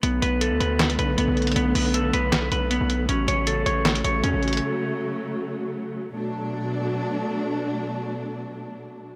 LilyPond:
<<
  \new Staff \with { instrumentName = "Clean electric guitar" } { \time 4/4 \key b \minor \tempo 4 = 157 b8 b'8 a'8 b'4 b'8 b4 | b8 b'8 a'8 b'4 b'8 b4 | cis'8 cis''8 a'8 cis''4 cis''8 cis'4~ | cis'2 r2 |
r1 | r1 | }
  \new Staff \with { instrumentName = "String section" } { \clef bass \time 4/4 \key b \minor <d a b>1~ | <d a b>1 | <cis fis a>1~ | <cis fis a>1 |
<b, fis a d'>1~ | <b, fis a d'>1 | }
  \new Staff \with { instrumentName = "808-style bass" } { \clef bass \time 4/4 \key b \minor b,,8 b,,8. d,16 d,8. cis,16 b,,8 b,,16 b,,8. | b,,8 b,,4 b,,4 b,,8. b,,8. | a,,8 a,,4 a,,4 a,,8 e,16 a,,8. | r1 |
r1 | r1 | }
  \new DrumStaff \with { instrumentName = "Drums" } \drummode { \time 4/4 hh8 hh8 hh8 hh8 <hc hh sn>16 hh16 hh8 hh8 hh32 hh32 hh32 hh32 | hh8 hho8 hh8 hh8 <hc hh sn>8 hh8 hh8 hh8 | hh8 hh8 hh8 hh8 <hc hh sn>16 hh16 hh8 hh8 hh32 hh32 hh32 hh32 | r4 r4 r4 r4 |
r4 r4 r4 r4 | r4 r4 r4 r4 | }
>>